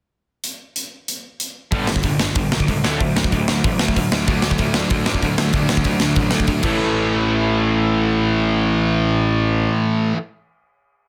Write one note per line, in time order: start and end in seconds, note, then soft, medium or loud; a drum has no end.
0.44 closed hi-hat medium
0.76 closed hi-hat medium
1.08 closed hi-hat medium
1.40 closed hi-hat medium
1.71 1.96 G1 loud
1.71 1.87 G2 medium
1.71 1.87 D3 loud
1.71 1.88 G3 loud
1.71 kick loud
1.71 open hi-hat medium
1.87 2.03 G2 medium
1.87 2.03 D3 medium
1.87 snare loud
1.96 kick medium
2.03 2.28 G1 medium
2.03 2.19 G2 medium
2.03 2.19 D3 medium
2.03 kick medium
2.03 open hi-hat medium
2.19 2.35 G2 medium
2.19 2.35 D3 medium
2.19 snare loud
2.35 2.48 G1 loud
2.35 2.51 G2 medium
2.35 2.51 D3 medium
2.35 kick loud
2.35 open hi-hat medium
2.52 2.64 B1 medium
2.52 2.66 G2 medium
2.52 2.67 D3 medium
2.52 snare loud
2.60 kick medium
2.67 2.80 C#2 medium
2.67 2.82 G2 medium
2.67 2.83 D3 medium
2.67 kick medium
2.67 open hi-hat medium
2.84 2.96 D2 medium
2.84 2.99 D3 medium
2.84 2.99 F#3 medium
2.84 3.00 A3 medium
2.84 3.00 D4 loud
2.84 snare loud
3.00 3.12 D2 loud
3.00 3.15 D3 medium
3.00 3.15 F#3 medium
3.00 3.15 A3 medium
3.00 kick loud
3.00 open hi-hat medium
3.16 3.28 D2 medium
3.16 3.31 D3 medium
3.16 3.31 F#3 medium
3.16 3.31 A3 medium
3.16 snare loud
3.24 kick loud
3.32 3.44 D2 medium
3.32 3.47 D3 medium
3.32 3.47 F#3 medium
3.32 3.47 A3 medium
3.32 kick loud
3.32 open hi-hat medium
3.48 3.60 D2 medium
3.48 3.63 D3 medium
3.48 3.63 F#3 medium
3.48 3.63 A3 medium
3.48 snare loud
3.64 3.76 A1 loud
3.64 3.79 D3 medium
3.64 3.79 F#3 medium
3.64 3.79 A3 medium
3.64 kick loud
3.64 open hi-hat medium
3.79 3.92 D2 medium
3.79 3.95 D3 medium
3.79 3.95 F#3 medium
3.79 3.95 A3 medium
3.79 snare loud
3.88 kick medium
3.96 4.08 D2 medium
3.96 4.10 D3 medium
3.96 4.11 F#3 medium
3.96 4.11 A3 medium
3.96 kick medium
3.96 open hi-hat medium
4.12 4.24 D2 loud
4.12 4.26 D3 medium
4.12 4.26 F#3 medium
4.12 4.27 A3 medium
4.12 snare loud
4.27 4.51 D2 loud
4.27 4.74 D3 medium
4.27 4.42 D3 medium
4.27 4.42 F#3 medium
4.27 4.75 A3 loud
4.27 4.43 A3 medium
4.27 4.73 D4 loud
4.27 kick medium
4.27 open hi-hat medium
4.42 4.58 D3 medium
4.42 4.58 F#3 medium
4.42 4.59 A3 medium
4.42 snare loud
4.51 kick medium
4.58 4.83 D2 medium
4.58 4.74 D3 medium
4.58 4.74 F#3 medium
4.58 4.74 A3 medium
4.58 kick loud
4.58 open hi-hat medium
4.74 4.90 D3 medium
4.74 5.52 D3 medium
4.74 4.90 F#3 medium
4.74 5.54 A3 medium
4.74 4.90 A3 medium
4.74 5.53 D4 medium
4.74 snare loud
4.90 5.03 D2 loud
4.90 5.05 D3 medium
4.90 5.06 F#3 medium
4.90 5.06 A3 medium
4.90 kick loud
4.90 open hi-hat medium
5.06 5.18 F#2 medium
5.06 5.21 D3 medium
5.06 5.22 F#3 medium
5.06 5.22 A3 medium
5.06 snare loud
5.14 kick medium
5.22 5.34 D2 medium
5.22 5.37 D3 medium
5.22 5.37 F#3 medium
5.22 5.38 A3 medium
5.22 kick medium
5.22 open hi-hat medium
5.38 5.50 D2 medium
5.38 5.52 D3 medium
5.38 5.52 F#3 medium
5.38 5.53 A3 medium
5.38 snare loud
5.53 5.66 D2 loud
5.53 6.00 D3 medium
5.53 5.68 D3 medium
5.53 5.68 F#3 medium
5.53 6.00 A3 loud
5.53 5.69 A3 medium
5.53 6.00 D4 loud
5.53 kick loud
5.53 open hi-hat medium
5.69 5.81 D2 medium
5.69 5.84 D3 medium
5.69 5.84 F#3 medium
5.69 5.85 A3 medium
5.69 snare loud
5.77 kick medium
5.84 5.97 D2 medium
5.84 5.99 D3 medium
5.84 6.00 F#3 medium
5.84 6.00 A3 medium
5.84 kick medium
5.84 open hi-hat medium
6.00 6.13 D2 medium
6.00 6.15 D3 medium
6.00 6.62 D3 medium
6.00 6.16 F#3 medium
6.00 6.64 A3 medium
6.00 6.15 A3 medium
6.00 6.64 D4 medium
6.00 snare loud
6.16 6.28 A1 loud
6.16 6.31 D3 medium
6.16 6.31 F#3 medium
6.16 6.31 A3 medium
6.16 kick loud
6.16 open hi-hat medium
6.31 6.44 D2 medium
6.31 6.47 D3 medium
6.31 6.47 F#3 medium
6.31 6.47 A3 medium
6.31 snare loud
6.40 kick medium
6.47 6.60 D2 medium
6.47 6.63 D3 medium
6.47 6.63 F#3 medium
6.47 6.63 A3 medium
6.47 kick medium
6.47 open hi-hat medium
6.63 9.67 A1 loud
6.63 10.13 A2 loud
6.63 10.14 E3 medium
6.63 10.15 E3 loud
6.63 10.15 A3 medium
6.63 10.16 C#4 loud
6.63 kick loud
6.63 crash medium
6.67 10.17 A3 loud
6.67 10.17 E4 loud